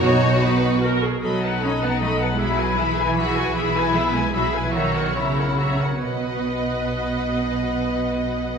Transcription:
<<
  \new Staff \with { instrumentName = "Violin section" } { \time 3/4 \key b \major \tempo 4 = 149 cis''4 b'4 r4 | b''8 a''8 b''8 a''8 b''8 a''8 | b''8 gis''8 b''8 gis''8 b''8 gis''8 | b''8 gis''8 b''8 gis''8 b''8 gis''8 |
ais''8 fis''8 ais''8 fis''8 ais''8 fis''8 | fis''2.~ | fis''2. | }
  \new Staff \with { instrumentName = "Viola section" } { \time 3/4 \key b \major <dis' fis'>4 dis'4 ais'8 gis'8 | <a' dis''>8 <b' fis''>8 <a' dis''>8 <b' fis''>8 <a' dis''>8 <b' fis''>8 | <gis' e''>8 <b' gis''>8 <gis' e''>8 <b' gis''>8 <gis' e''>8 <b' gis''>8 | <gis' e''>8 <b' gis''>8 <gis' e''>8 <b' gis''>8 <gis' e''>8 <b' gis''>8 |
<cis'' e''>8 <ais' cis''>8 <cis'' e''>8 <ais' cis''>8 <cis'' e''>8 <ais' cis''>8 | b'2.~ | b'2. | }
  \new Staff \with { instrumentName = "Violin section" } { \time 3/4 \key b \major fis'2~ fis'8 r8 | dis'2. | e'2 fis'4 | e'2 e'4 |
fis'4 e'4 fis'8 r8 | dis''2.~ | dis''2. | }
  \new Staff \with { instrumentName = "Cello section" } { \clef bass \time 3/4 \key b \major b,2~ b,8 r8 | fis4 cis'8 b8 a8. gis16 | fis4 e2 | e4 b8 gis8 fis8. e16 |
dis4 cis2 | b,2.~ | b,2. | }
  \new Staff \with { instrumentName = "Double bass section" } { \clef bass \time 3/4 \key b \major b,,2~ b,,8 r8 | b,,2.~ | b,,2. | b,,2.~ |
b,,2~ b,,8 r8 | b,,2.~ | b,,2. | }
>>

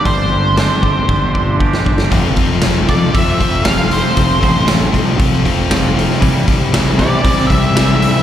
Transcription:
<<
  \new Staff \with { instrumentName = "Lead electric guitar" } { \time 4/4 \key f \lydian \tempo 4 = 117 c''2. r4 | r4. d''8 e''4 f''8 c''8~ | c''4 r2. | r4. d''4 e''4 e''8 | }
  \new Staff \with { instrumentName = "Overdriven electric guitar" } { \time 4/4 \key f \lydian r1 | <f a c' f'>8 <f a c' f'>8 <f a c' f'>8 <f a c' f'>8 <f a c' f'>8 <f a c' f'>8 <f a c' f'>8 <f a c' f'>8 | <f a c' f'>8 <f a c' f'>8 <f a c' f'>8 <f a c' f'>8 <f a c' f'>8 <f a c' f'>8 <f a c' f'>8 <f a c' f'>8 | <c e g c' e'>8 <c e g c' e'>8 <c e g c' e'>8 <c e g c' e'>8 <c e g c' e'>8 <c e g c' e'>8 <c e g c' e'>8 <c e g c' e'>8 | }
  \new Staff \with { instrumentName = "Clean electric guitar" } { \clef bass \time 4/4 \key f \lydian <g, d g c' d' g'>8 <g c' d' g'>8 <g c' d' g'>8 <g, d g c' d' g'>8 <g c' d' g'>8 <g c' d' g'>8 <g, d g c' d' g'>8 <g c' d' g'>8 | <f, c f>8 <f, c>8 <f, c>8 <f, c f>8 <f, c>8 <f, c>8 <f, c f>8 <f, c>8 | <f, c f>8 <f, c>8 <f, c>8 <f, c f>8 <f, c>8 <f, c>8 <f, c f>8 <f, c>8 | <c e g>8 <c e>8 <c e>8 <c e g>8 <c e>8 <c e>8 <c e g>8 <c e>8 | }
  \new Staff \with { instrumentName = "Fingered electric bass" } { \clef bass \time 4/4 \key f \lydian g,,4. g,,8 g,,4. g,,8 | f,,8 f,,4 f,8 f,8 f,,4. | f,,8 a,,4 c,8 c,8 f,,4. | c,8 c,4 c8 c8 c,4. | }
  \new DrumStaff \with { instrumentName = "Drums" } \drummode { \time 4/4 <hho bd>4 <hho sn>8 bd8 bd8 bd8 bd16 sn16 bd16 sn16 | <hho bd>8 <hho bd>8 <hho sn>8 <hho bd>8 <hho bd>8 <hho bd>8 <hho sn>8 hho8 | <hho bd>8 <hho bd>8 <hho sn>8 <hho bd>8 <hho bd>16 sn16 <hho bd>8 <hho sn>8 hho16 sn16 | <hho bd>8 <hho bd>8 <hho sn>8 <hho bd>8 <hho bd>16 sn16 <hho bd>8 <hho sn>8 hho16 sn16 | }
>>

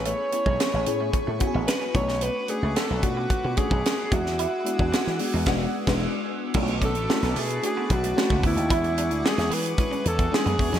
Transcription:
<<
  \new Staff \with { instrumentName = "Analog synth pad" } { \time 4/4 \key b \dorian \tempo 4 = 111 << { <a gis'' cis'''>2.~ <a gis'' cis'''>8 <b' fis'' d'''>8~ | <b' fis'' d'''>2.~ <b' fis'' d'''>8 <gis' fis'' e'''>8~ | <gis' fis'' e'''>1 | <b' a'' d'''>1 |
<gis' fis'' d'''>1 | } \\ { b''2.~ b''8 r8 | r1 | r1 | cis'''1~ |
cis'''1 | } >> }
  \new Staff \with { instrumentName = "Alto saxophone" } { \time 4/4 \key b \dorian cis''2~ cis''8 r8 b'8 cis''8 | b'8 gis'8 a'8 fis'4 gis'4 fis'8~ | fis'2. r4 | r8 a'4 gis'8 gis'8 fis'4 e'8~ |
e'4 gis'8 b'4 a'8 gis'4 | }
  \new Staff \with { instrumentName = "FM electric piano" } { \time 4/4 \key b \dorian <b cis' e' gis'>8 <b cis' e' gis'>4 <b cis' e' gis'>4 <b cis' e' fis' gis'>4 <a cis' d' fis'>8~ | <a cis' d' fis'>8 <a cis' d' fis'>4 <a cis' d' eis' fis'>4 <a cis' d' fis'>4 <gis b d' fis'>8~ | <gis b d' fis'>8 <gis b d' e'>4 <gis b d' fis'>8 <gis b d' fis'>8 r16 <gis b d' fis'>8 r8. | <a cis' d' eis' fis'>4 <a cis' d' e'>4 <a cis' d' fis'>4 <a cis' d' fis'>4 |
<gis cis' d' fis'>4 <g gis cis' d' fis'>4 <gis cis' d' e'>4 <gis cis' d' e'>4 | }
  \new Staff \with { instrumentName = "Clean electric guitar" } { \time 4/4 \key b \dorian a16 r8 gis16 b16 r8 a16 r16 a16 r16 b16 r16 cis'16 r16 cis'16 | b16 r8 a16 cis'16 r8 b16 r16 b16 r16 cis'16 r8 gis16 r16 | e'16 r8 d'16 b16 r8 gis16 r2 | b16 r16 cis'16 r8 b16 a16 r8 b16 r16 a16 r16 a16 b16 r16 |
e'16 r16 d'16 r8 cis'16 b16 r8 cis'16 r16 b16 r16 b16 r16 cis'16 | }
  \new Staff \with { instrumentName = "Slap bass" } { \clef bass \time 4/4 \key b \dorian a,,16 r8 b,,16 r16 a,,16 a,8 r16 a,16 r16 a,,16 r8 b,,8~ | b,,16 r8 cis,16 r16 b,,16 b,8 r16 b,16 r16 b,,16 r8 e,8~ | e,16 r8 e,16 r16 e16 r16 e,16 e,,8 r16 e,,8 r8. | b,,8. a,,16 r16 b,,16 b,8 r8 b,,8 r16 cis,16 d,16 dis,16 |
e,8. d,16 r16 e,16 e8 r8 e,8 r16 fis,16 e,16 eis,16 | }
  \new DrumStaff \with { instrumentName = "Drums" } \drummode { \time 4/4 hh8 hh16 bd16 <hh sn>8 hh8 <hh bd>8 <hh bd>8 <hh sn>8 <hh bd>16 sn16 | hh8 hh8 <hh sn>8 <hh bd>8 <hh bd>8 <hh bd>16 bd16 <hh sn>8 <hh bd>16 sn16 | hh8 hh16 bd16 <hh sn>16 sn16 hho8 <cymc bd sn>8. <cymc bd sn>16 r4 | <cymc bd>16 hh16 <hh bd>16 hh16 sn16 <hh sn>16 hho16 hh16 hh8 <hh bd>16 hh16 sn16 bd16 <hho bd>16 hh16 |
<hh bd>16 hh16 hh16 hh16 sn16 <hh sn>16 hho16 hh16 <hh bd>16 hh16 hh16 <hh bd>16 sn16 hh16 <hho bd>16 <hh sn>16 | }
>>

